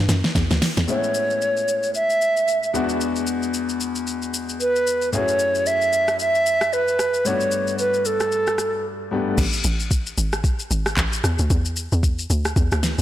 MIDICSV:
0, 0, Header, 1, 5, 480
1, 0, Start_track
1, 0, Key_signature, 3, "major"
1, 0, Tempo, 530973
1, 799, Time_signature, 4, 2, 24, 8
1, 11769, End_track
2, 0, Start_track
2, 0, Title_t, "Flute"
2, 0, Program_c, 0, 73
2, 805, Note_on_c, 0, 73, 93
2, 1726, Note_off_c, 0, 73, 0
2, 1765, Note_on_c, 0, 76, 109
2, 2446, Note_off_c, 0, 76, 0
2, 4166, Note_on_c, 0, 71, 99
2, 4610, Note_off_c, 0, 71, 0
2, 4646, Note_on_c, 0, 73, 104
2, 5126, Note_on_c, 0, 76, 104
2, 5139, Note_off_c, 0, 73, 0
2, 5603, Note_off_c, 0, 76, 0
2, 5607, Note_on_c, 0, 76, 112
2, 6085, Note_on_c, 0, 71, 101
2, 6099, Note_off_c, 0, 76, 0
2, 6565, Note_on_c, 0, 73, 105
2, 6579, Note_off_c, 0, 71, 0
2, 7041, Note_off_c, 0, 73, 0
2, 7046, Note_on_c, 0, 71, 87
2, 7286, Note_on_c, 0, 69, 85
2, 7300, Note_off_c, 0, 71, 0
2, 8003, Note_off_c, 0, 69, 0
2, 11769, End_track
3, 0, Start_track
3, 0, Title_t, "Grand piano"
3, 0, Program_c, 1, 0
3, 792, Note_on_c, 1, 45, 64
3, 798, Note_on_c, 1, 56, 60
3, 803, Note_on_c, 1, 59, 59
3, 809, Note_on_c, 1, 61, 58
3, 815, Note_on_c, 1, 64, 72
3, 978, Control_c, 1, 64, 127
3, 2442, Note_off_c, 1, 45, 0
3, 2445, Note_off_c, 1, 56, 0
3, 2448, Note_off_c, 1, 59, 0
3, 2451, Note_off_c, 1, 61, 0
3, 2454, Note_off_c, 1, 64, 0
3, 2472, Note_on_c, 1, 40, 77
3, 2478, Note_on_c, 1, 56, 66
3, 2484, Note_on_c, 1, 59, 66
3, 2490, Note_on_c, 1, 62, 67
3, 2492, Control_c, 1, 64, 0
3, 2495, Note_on_c, 1, 66, 82
3, 2652, Control_c, 1, 64, 127
3, 4360, Note_off_c, 1, 40, 0
3, 4363, Note_off_c, 1, 56, 0
3, 4366, Note_off_c, 1, 59, 0
3, 4368, Note_off_c, 1, 62, 0
3, 4371, Note_off_c, 1, 66, 0
3, 4633, Note_on_c, 1, 42, 66
3, 4637, Note_on_c, 1, 57, 58
3, 4642, Note_on_c, 1, 61, 58
3, 4646, Note_on_c, 1, 64, 62
3, 4649, Control_c, 1, 64, 0
3, 4651, Note_on_c, 1, 66, 58
3, 4655, Note_on_c, 1, 68, 72
3, 4821, Control_c, 1, 64, 127
3, 6520, Note_off_c, 1, 42, 0
3, 6522, Note_off_c, 1, 57, 0
3, 6524, Note_off_c, 1, 61, 0
3, 6527, Note_off_c, 1, 64, 0
3, 6529, Note_off_c, 1, 66, 0
3, 6531, Note_off_c, 1, 68, 0
3, 6553, Note_on_c, 1, 43, 64
3, 6558, Note_on_c, 1, 57, 60
3, 6564, Note_on_c, 1, 59, 58
3, 6569, Control_c, 1, 64, 0
3, 6570, Note_on_c, 1, 62, 59
3, 6575, Note_on_c, 1, 66, 73
3, 6706, Control_c, 1, 64, 127
3, 8202, Note_off_c, 1, 43, 0
3, 8205, Note_off_c, 1, 57, 0
3, 8208, Note_off_c, 1, 59, 0
3, 8211, Note_off_c, 1, 62, 0
3, 8214, Note_off_c, 1, 66, 0
3, 8238, Note_on_c, 1, 43, 56
3, 8241, Note_on_c, 1, 57, 51
3, 8244, Note_on_c, 1, 59, 55
3, 8247, Note_on_c, 1, 62, 53
3, 8250, Note_on_c, 1, 67, 64
3, 8479, Note_off_c, 1, 43, 0
3, 8480, Note_off_c, 1, 57, 0
3, 8482, Note_off_c, 1, 59, 0
3, 8483, Note_off_c, 1, 62, 0
3, 8485, Note_off_c, 1, 67, 0
3, 8491, Control_c, 1, 64, 0
3, 11769, End_track
4, 0, Start_track
4, 0, Title_t, "Log drum bass"
4, 0, Program_c, 2, 39
4, 79, Note_on_c, 2, 42, 97
4, 205, Note_off_c, 2, 42, 0
4, 318, Note_on_c, 2, 40, 95
4, 444, Note_off_c, 2, 40, 0
4, 459, Note_on_c, 2, 38, 95
4, 550, Note_off_c, 2, 38, 0
4, 699, Note_on_c, 2, 40, 89
4, 790, Note_off_c, 2, 40, 0
4, 8479, Note_on_c, 2, 33, 112
4, 8696, Note_off_c, 2, 33, 0
4, 8719, Note_on_c, 2, 33, 104
4, 9163, Note_off_c, 2, 33, 0
4, 9200, Note_on_c, 2, 32, 90
4, 9543, Note_off_c, 2, 32, 0
4, 9680, Note_on_c, 2, 32, 102
4, 9896, Note_off_c, 2, 32, 0
4, 9918, Note_on_c, 2, 33, 97
4, 10135, Note_off_c, 2, 33, 0
4, 10159, Note_on_c, 2, 40, 93
4, 10285, Note_off_c, 2, 40, 0
4, 10299, Note_on_c, 2, 38, 96
4, 10390, Note_off_c, 2, 38, 0
4, 10399, Note_on_c, 2, 40, 112
4, 10742, Note_off_c, 2, 40, 0
4, 10779, Note_on_c, 2, 40, 102
4, 11086, Note_off_c, 2, 40, 0
4, 11119, Note_on_c, 2, 38, 93
4, 11336, Note_off_c, 2, 38, 0
4, 11357, Note_on_c, 2, 40, 99
4, 11484, Note_off_c, 2, 40, 0
4, 11499, Note_on_c, 2, 38, 90
4, 11715, Note_off_c, 2, 38, 0
4, 11738, Note_on_c, 2, 37, 92
4, 11769, Note_off_c, 2, 37, 0
4, 11769, End_track
5, 0, Start_track
5, 0, Title_t, "Drums"
5, 79, Note_on_c, 9, 38, 77
5, 82, Note_on_c, 9, 82, 101
5, 170, Note_off_c, 9, 38, 0
5, 173, Note_off_c, 9, 82, 0
5, 219, Note_on_c, 9, 38, 76
5, 309, Note_off_c, 9, 38, 0
5, 318, Note_on_c, 9, 36, 97
5, 319, Note_on_c, 9, 38, 99
5, 321, Note_on_c, 9, 82, 70
5, 409, Note_off_c, 9, 36, 0
5, 410, Note_off_c, 9, 38, 0
5, 412, Note_off_c, 9, 82, 0
5, 459, Note_on_c, 9, 38, 83
5, 460, Note_on_c, 9, 82, 53
5, 549, Note_off_c, 9, 38, 0
5, 551, Note_off_c, 9, 82, 0
5, 559, Note_on_c, 9, 38, 112
5, 563, Note_on_c, 9, 46, 71
5, 563, Note_on_c, 9, 82, 88
5, 650, Note_off_c, 9, 38, 0
5, 653, Note_off_c, 9, 46, 0
5, 653, Note_off_c, 9, 82, 0
5, 694, Note_on_c, 9, 82, 58
5, 699, Note_on_c, 9, 38, 100
5, 784, Note_off_c, 9, 82, 0
5, 789, Note_off_c, 9, 38, 0
5, 799, Note_on_c, 9, 82, 79
5, 889, Note_off_c, 9, 82, 0
5, 935, Note_on_c, 9, 82, 54
5, 1026, Note_off_c, 9, 82, 0
5, 1034, Note_on_c, 9, 82, 88
5, 1124, Note_off_c, 9, 82, 0
5, 1178, Note_on_c, 9, 82, 41
5, 1268, Note_off_c, 9, 82, 0
5, 1279, Note_on_c, 9, 82, 74
5, 1370, Note_off_c, 9, 82, 0
5, 1417, Note_on_c, 9, 82, 46
5, 1507, Note_off_c, 9, 82, 0
5, 1520, Note_on_c, 9, 82, 87
5, 1611, Note_off_c, 9, 82, 0
5, 1655, Note_on_c, 9, 82, 50
5, 1745, Note_off_c, 9, 82, 0
5, 1759, Note_on_c, 9, 82, 66
5, 1850, Note_off_c, 9, 82, 0
5, 1897, Note_on_c, 9, 82, 45
5, 1988, Note_off_c, 9, 82, 0
5, 2002, Note_on_c, 9, 82, 89
5, 2092, Note_off_c, 9, 82, 0
5, 2140, Note_on_c, 9, 82, 53
5, 2231, Note_off_c, 9, 82, 0
5, 2241, Note_on_c, 9, 82, 67
5, 2332, Note_off_c, 9, 82, 0
5, 2381, Note_on_c, 9, 82, 46
5, 2471, Note_off_c, 9, 82, 0
5, 2483, Note_on_c, 9, 82, 77
5, 2573, Note_off_c, 9, 82, 0
5, 2614, Note_on_c, 9, 82, 53
5, 2705, Note_off_c, 9, 82, 0
5, 2719, Note_on_c, 9, 82, 84
5, 2809, Note_off_c, 9, 82, 0
5, 2855, Note_on_c, 9, 82, 56
5, 2946, Note_off_c, 9, 82, 0
5, 2954, Note_on_c, 9, 82, 85
5, 3045, Note_off_c, 9, 82, 0
5, 3098, Note_on_c, 9, 82, 43
5, 3188, Note_off_c, 9, 82, 0
5, 3199, Note_on_c, 9, 82, 75
5, 3290, Note_off_c, 9, 82, 0
5, 3337, Note_on_c, 9, 82, 47
5, 3427, Note_off_c, 9, 82, 0
5, 3440, Note_on_c, 9, 82, 83
5, 3530, Note_off_c, 9, 82, 0
5, 3575, Note_on_c, 9, 82, 52
5, 3666, Note_off_c, 9, 82, 0
5, 3679, Note_on_c, 9, 82, 62
5, 3770, Note_off_c, 9, 82, 0
5, 3818, Note_on_c, 9, 82, 45
5, 3908, Note_off_c, 9, 82, 0
5, 3922, Note_on_c, 9, 82, 94
5, 4012, Note_off_c, 9, 82, 0
5, 4060, Note_on_c, 9, 82, 51
5, 4150, Note_off_c, 9, 82, 0
5, 4161, Note_on_c, 9, 82, 65
5, 4252, Note_off_c, 9, 82, 0
5, 4300, Note_on_c, 9, 82, 51
5, 4391, Note_off_c, 9, 82, 0
5, 4403, Note_on_c, 9, 82, 77
5, 4493, Note_off_c, 9, 82, 0
5, 4534, Note_on_c, 9, 82, 53
5, 4625, Note_off_c, 9, 82, 0
5, 4639, Note_on_c, 9, 82, 83
5, 4729, Note_off_c, 9, 82, 0
5, 4775, Note_on_c, 9, 82, 57
5, 4866, Note_off_c, 9, 82, 0
5, 4874, Note_on_c, 9, 82, 85
5, 4964, Note_off_c, 9, 82, 0
5, 5017, Note_on_c, 9, 82, 44
5, 5108, Note_off_c, 9, 82, 0
5, 5119, Note_on_c, 9, 82, 72
5, 5209, Note_off_c, 9, 82, 0
5, 5257, Note_on_c, 9, 82, 46
5, 5347, Note_off_c, 9, 82, 0
5, 5360, Note_on_c, 9, 82, 89
5, 5450, Note_off_c, 9, 82, 0
5, 5495, Note_on_c, 9, 82, 51
5, 5497, Note_on_c, 9, 37, 79
5, 5585, Note_off_c, 9, 82, 0
5, 5588, Note_off_c, 9, 37, 0
5, 5599, Note_on_c, 9, 82, 67
5, 5689, Note_off_c, 9, 82, 0
5, 5737, Note_on_c, 9, 82, 44
5, 5828, Note_off_c, 9, 82, 0
5, 5842, Note_on_c, 9, 82, 93
5, 5932, Note_off_c, 9, 82, 0
5, 5977, Note_on_c, 9, 37, 96
5, 5980, Note_on_c, 9, 82, 50
5, 6068, Note_off_c, 9, 37, 0
5, 6070, Note_off_c, 9, 82, 0
5, 6081, Note_on_c, 9, 82, 64
5, 6172, Note_off_c, 9, 82, 0
5, 6220, Note_on_c, 9, 82, 49
5, 6310, Note_off_c, 9, 82, 0
5, 6320, Note_on_c, 9, 37, 92
5, 6323, Note_on_c, 9, 82, 80
5, 6411, Note_off_c, 9, 37, 0
5, 6413, Note_off_c, 9, 82, 0
5, 6454, Note_on_c, 9, 82, 52
5, 6544, Note_off_c, 9, 82, 0
5, 6558, Note_on_c, 9, 82, 83
5, 6649, Note_off_c, 9, 82, 0
5, 6695, Note_on_c, 9, 82, 56
5, 6785, Note_off_c, 9, 82, 0
5, 6793, Note_on_c, 9, 82, 89
5, 6884, Note_off_c, 9, 82, 0
5, 6937, Note_on_c, 9, 82, 44
5, 7028, Note_off_c, 9, 82, 0
5, 7038, Note_on_c, 9, 82, 74
5, 7129, Note_off_c, 9, 82, 0
5, 7176, Note_on_c, 9, 82, 46
5, 7267, Note_off_c, 9, 82, 0
5, 7279, Note_on_c, 9, 82, 89
5, 7370, Note_off_c, 9, 82, 0
5, 7414, Note_on_c, 9, 82, 51
5, 7417, Note_on_c, 9, 37, 83
5, 7505, Note_off_c, 9, 82, 0
5, 7507, Note_off_c, 9, 37, 0
5, 7518, Note_on_c, 9, 82, 64
5, 7609, Note_off_c, 9, 82, 0
5, 7657, Note_on_c, 9, 82, 44
5, 7662, Note_on_c, 9, 37, 94
5, 7748, Note_off_c, 9, 82, 0
5, 7752, Note_off_c, 9, 37, 0
5, 7758, Note_on_c, 9, 37, 86
5, 7761, Note_on_c, 9, 82, 91
5, 7848, Note_off_c, 9, 37, 0
5, 7852, Note_off_c, 9, 82, 0
5, 8478, Note_on_c, 9, 82, 90
5, 8479, Note_on_c, 9, 36, 113
5, 8479, Note_on_c, 9, 49, 108
5, 8569, Note_off_c, 9, 36, 0
5, 8569, Note_off_c, 9, 82, 0
5, 8570, Note_off_c, 9, 49, 0
5, 8615, Note_on_c, 9, 82, 60
5, 8705, Note_off_c, 9, 82, 0
5, 8714, Note_on_c, 9, 82, 100
5, 8804, Note_off_c, 9, 82, 0
5, 8857, Note_on_c, 9, 82, 48
5, 8948, Note_off_c, 9, 82, 0
5, 8957, Note_on_c, 9, 36, 90
5, 8959, Note_on_c, 9, 82, 81
5, 9047, Note_off_c, 9, 36, 0
5, 9049, Note_off_c, 9, 82, 0
5, 9097, Note_on_c, 9, 82, 51
5, 9187, Note_off_c, 9, 82, 0
5, 9200, Note_on_c, 9, 82, 98
5, 9291, Note_off_c, 9, 82, 0
5, 9335, Note_on_c, 9, 82, 56
5, 9338, Note_on_c, 9, 37, 89
5, 9425, Note_off_c, 9, 82, 0
5, 9428, Note_off_c, 9, 37, 0
5, 9437, Note_on_c, 9, 36, 112
5, 9439, Note_on_c, 9, 82, 70
5, 9527, Note_off_c, 9, 36, 0
5, 9529, Note_off_c, 9, 82, 0
5, 9577, Note_on_c, 9, 82, 48
5, 9667, Note_off_c, 9, 82, 0
5, 9682, Note_on_c, 9, 82, 100
5, 9772, Note_off_c, 9, 82, 0
5, 9817, Note_on_c, 9, 37, 102
5, 9820, Note_on_c, 9, 82, 53
5, 9908, Note_off_c, 9, 37, 0
5, 9910, Note_off_c, 9, 82, 0
5, 9918, Note_on_c, 9, 36, 93
5, 9918, Note_on_c, 9, 39, 107
5, 9921, Note_on_c, 9, 82, 75
5, 10008, Note_off_c, 9, 39, 0
5, 10009, Note_off_c, 9, 36, 0
5, 10011, Note_off_c, 9, 82, 0
5, 10060, Note_on_c, 9, 82, 55
5, 10150, Note_off_c, 9, 82, 0
5, 10160, Note_on_c, 9, 37, 101
5, 10163, Note_on_c, 9, 82, 89
5, 10251, Note_off_c, 9, 37, 0
5, 10253, Note_off_c, 9, 82, 0
5, 10294, Note_on_c, 9, 82, 58
5, 10384, Note_off_c, 9, 82, 0
5, 10398, Note_on_c, 9, 82, 91
5, 10399, Note_on_c, 9, 36, 113
5, 10489, Note_off_c, 9, 36, 0
5, 10489, Note_off_c, 9, 82, 0
5, 10535, Note_on_c, 9, 82, 62
5, 10625, Note_off_c, 9, 82, 0
5, 10634, Note_on_c, 9, 82, 97
5, 10724, Note_off_c, 9, 82, 0
5, 10777, Note_on_c, 9, 82, 47
5, 10868, Note_off_c, 9, 82, 0
5, 10876, Note_on_c, 9, 36, 86
5, 10879, Note_on_c, 9, 82, 78
5, 10967, Note_off_c, 9, 36, 0
5, 10969, Note_off_c, 9, 82, 0
5, 11017, Note_on_c, 9, 82, 52
5, 11107, Note_off_c, 9, 82, 0
5, 11120, Note_on_c, 9, 82, 99
5, 11210, Note_off_c, 9, 82, 0
5, 11255, Note_on_c, 9, 82, 57
5, 11257, Note_on_c, 9, 37, 90
5, 11345, Note_off_c, 9, 82, 0
5, 11348, Note_off_c, 9, 37, 0
5, 11357, Note_on_c, 9, 36, 113
5, 11359, Note_on_c, 9, 82, 70
5, 11447, Note_off_c, 9, 36, 0
5, 11449, Note_off_c, 9, 82, 0
5, 11498, Note_on_c, 9, 82, 48
5, 11503, Note_on_c, 9, 37, 101
5, 11588, Note_off_c, 9, 82, 0
5, 11593, Note_off_c, 9, 37, 0
5, 11599, Note_on_c, 9, 38, 71
5, 11602, Note_on_c, 9, 82, 98
5, 11689, Note_off_c, 9, 38, 0
5, 11693, Note_off_c, 9, 82, 0
5, 11740, Note_on_c, 9, 82, 55
5, 11769, Note_off_c, 9, 82, 0
5, 11769, End_track
0, 0, End_of_file